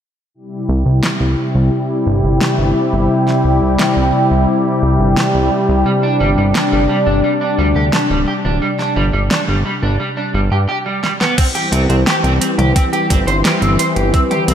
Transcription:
0.34 analog synth pad C3 G3 E4 G4
0.69 analog synth bass C2
0.86 analog synth bass C2
1.03 snare
1.20 analog synth bass C2
1.55 analog synth bass C2
2.07 analog synth bass G1
2.24 analog synth bass G1
2.41 snare
2.58 analog synth bass G1
2.93 analog synth bass G1
3.27 snare
3.45 analog synth bass C2
3.62 analog synth bass C2
3.79 snare
3.97 analog synth bass C2
4.31 analog synth bass C2
4.83 analog synth bass C2
5.00 analog synth bass G1
5.17 snare
5.34 analog synth bass C2
5.69 analog synth bass C2
5.86 clean electric guitar G3, analog synth pad D4
6.03 clean electric guitar D4
6.20 analog synth bass G1, clean electric guitar G3
6.38 analog synth bass G1, clean electric guitar G3
6.55 clean electric guitar D4, snare
6.72 analog synth bass G1, clean electric guitar G3
6.89 clean electric guitar G3
7.07 analog synth bass G1, clean electric guitar D4
7.24 clean electric guitar G3
7.41 clean electric guitar D4
7.58 analog synth bass D2, clean electric guitar G3
7.76 analog synth bass D2, clean electric guitar G4
7.93 clean electric guitar D4, snare
8.10 analog synth bass D1, clean electric guitar G3
8.28 clean electric guitar G4
8.45 analog synth bass D1, clean electric guitar D4
8.62 clean electric guitar G3
8.79 clean electric guitar D4, snare
8.96 analog synth bass G1, clean electric guitar G3
9.13 analog synth bass G1, clean electric guitar G3
9.31 clean electric guitar D4, snare
9.48 analog synth bass G1, clean electric guitar G3
9.65 clean electric guitar G3
9.83 analog synth bass G1, clean electric guitar D4
10.00 clean electric guitar G3
10.17 clean electric guitar D4
10.34 analog synth bass G1, clean electric guitar G3
10.51 analog synth bass G2, clean electric guitar G4
10.69 clean electric guitar G4
10.86 clean electric guitar G3
11.03 clean electric guitar G3, snare
11.20 clean electric guitar B3, snare
11.38 analog synth pad E3 G3 C4 G4, clean electric guitar C4, kick, closed hi-hat, crash
11.55 clean electric guitar G4, closed hi-hat
11.72 analog synth bass C2, clean electric guitar C4, closed hi-hat
11.89 analog synth bass C2, clean electric guitar C4, closed hi-hat
12.07 clean electric guitar G4, snare, closed hi-hat
12.24 analog synth bass C2, clean electric guitar C4, closed hi-hat
12.41 clean electric guitar C4, closed hi-hat
12.58 analog synth bass C2, clean electric guitar G4, closed hi-hat, mid tom
12.76 clean electric guitar C4, kick, closed hi-hat
12.93 clean electric guitar G4, closed hi-hat
13.10 analog synth bass G1, clean electric guitar C4, kick, closed hi-hat
13.27 analog synth bass G1, clean electric guitar C5, closed hi-hat
13.44 clean electric guitar G4, snare, closed hi-hat
13.62 analog synth bass G1, clean electric guitar C4, closed hi-hat
13.79 clean electric guitar C5, closed hi-hat
13.96 analog synth bass G1, clean electric guitar G4, closed hi-hat
14.14 clean electric guitar C4, kick, closed hi-hat
14.31 clean electric guitar G4, closed hi-hat, mid tom
14.48 analog synth bass C2, clean electric guitar C4, closed hi-hat, mid tom

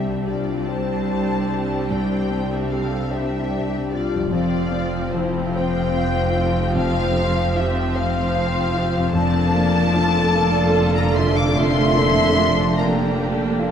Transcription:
Already playing: grand piano C2 C4, double bass section C2, cello section C2, harp C3 C4 D4 G4, viola section G3 C4, french horn section D4 G4, violin section D4 G4 E5, flute section G4
0.26 flute section F4, grand piano G4, violin section D5
0.68 grand piano C5, flute section C5, violin section A5
1.09 grand piano D5
1.50 grand piano G4
1.89 grand piano C2, flute section C5, violin section G5
2.31 grand piano C4
2.51 flute section G4, violin section E5
2.71 grand piano G4, flute section A4, violin section F5
3.10 flute section G4, grand piano C5, violin section E5
3.50 grand piano D5
3.90 flute section F4, grand piano G4, violin section D5
4.14 harp F2
4.18 harp C4
4.23 harp F3
4.30 double bass section F1, grand piano F2, cello section F2, viola section F3 C4, french horn section F3 C4, violin section F4 G4 D5, flute section F4
4.71 grand piano C4
5.14 grand piano F3, flute section E4, violin section C5
5.55 grand piano C5, flute section C5, violin section G5
5.97 grand piano F5
6.36 grand piano F4
6.75 grand piano F2, flute section C5, violin section F5
7.16 grand piano C4
7.56 grand piano F4, flute section G4, violin section E5
7.95 grand piano C5, flute section C5, violin section F5
8.35 grand piano F5
8.75 grand piano F4
8.97 harp F2
9.02 harp A#3
9.06 harp D4
9.13 double bass section F1, grand piano F2, cello section F2, french horn section A#2 D4, viola section F3 C4, violin section D4 A4 A5, flute section D5
9.54 grand piano A#3, viola section A#3
9.93 grand piano F4, viola section A4
10.34 viola section D3, grand piano A#3, violin section F4 A4
10.75 grand piano D5
10.96 flute section D5, violin section A#5
11.15 grand piano F4, flute section E5, violin section C6
11.36 flute section F5, violin section D6
11.56 grand piano F2, viola section A3, violin section F4 C6, flute section E5
11.97 grand piano A#3, violin section E4
12.37 violin section D4, grand piano F4
12.77 viola section D3 A#3, violin section D4 G4 A#5, grand piano A#4, flute section D5
13.19 grand piano D5
13.59 grand piano F4

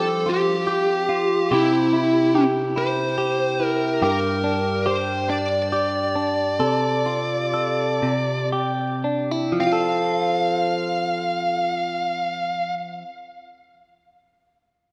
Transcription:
Already playing: clean electric guitar F3 C4 F4 G4, lead electric guitar A4
0.26 clean electric guitar F4, lead electric guitar G4
0.67 clean electric guitar G4
1.09 clean electric guitar F4
1.51 clean electric guitar C3 G4, lead electric guitar E4
1.93 clean electric guitar E4
2.35 clean electric guitar G4
2.76 clean electric guitar E4, lead electric guitar C5
3.18 clean electric guitar G4
3.60 clean electric guitar E4
3.65 lead electric guitar A#4
4.02 clean electric guitar G2 G4, lead electric guitar A#4
4.44 clean electric guitar D4
4.86 clean electric guitar G4, lead electric guitar C5
5.29 clean electric guitar D4, lead electric guitar D5
5.72 clean electric guitar G4
6.15 clean electric guitar D4
6.59 clean electric guitar C3 A4
7.06 clean electric guitar F4
7.54 clean electric guitar A4
8.02 clean electric guitar C3
8.52 clean electric guitar G4
9.04 clean electric guitar D4
9.31 clean electric guitar E4
9.52 clean electric guitar F3
9.60 clean electric guitar C4, lead electric guitar F5
9.67 clean electric guitar F4
9.72 clean electric guitar A4

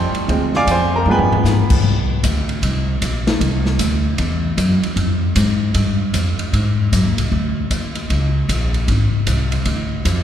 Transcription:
Already playing: upright bass F2, upright piano F3 G3 C#4 C5 G5 A5 C6
0.14 muted upright bass stroke, ride
0.28 upright bass D2, upright piano F3 G#3 C4, kick, ride
0.54 upright piano D5 F5 G#5 D6, snare
0.67 upright bass F2, kick, hi-hat pedal, ride
0.71 upright piano C5 F5 G#5 C6
0.96 upright piano A#4 A#5
1.06 upright bass G2, upright piano F3 G#3 B3
1.11 upright piano B4 G5 G#5 B5
1.18 upright bass F2, floor tom
1.31 upright bass D2, floor tom
1.44 upright bass G#2, snare, hi-hat pedal
1.70 kick, crash
1.84 upright bass C2, kick
2.23 upright bass D2, kick, hi-hat pedal, ride
2.49 ride
2.62 upright bass C2, kick, ride
3.01 upright bass A#1, kick, hi-hat pedal, ride
3.27 snare, ride
3.40 upright bass C2, kick, ride
3.65 snare
3.79 upright bass D2, kick, hi-hat pedal, ride
4.18 upright bass E2, kick, ride
4.57 upright bass F#2, kick, hi-hat pedal, ride
4.82 muted upright bass stroke, ride
4.96 upright bass F2, kick, ride
5.36 upright bass G#2, kick, hi-hat pedal, ride
5.74 upright bass G2, kick, ride
6.13 upright bass F2, kick, hi-hat pedal, ride
6.38 muted upright bass stroke, ride
6.53 upright bass G#2, kick, ride
6.92 upright bass F#2, kick, hi-hat pedal, ride
7.05 upright bass D#2
7.17 upright bass C2, ride
7.32 upright bass D2, kick
7.70 upright bass D#2, kick, hi-hat pedal, ride
7.95 ride
8.10 upright bass C#2, kick, ride
8.49 upright bass A#1, kick, hi-hat pedal, ride
8.74 ride
8.88 upright bass G#1, kick, ride
9.12 muted upright bass stroke
9.27 upright bass C2, kick, hi-hat pedal, ride
9.52 ride
9.65 upright bass D2, kick, ride
10.05 upright bass F2, kick, hi-hat pedal, ride

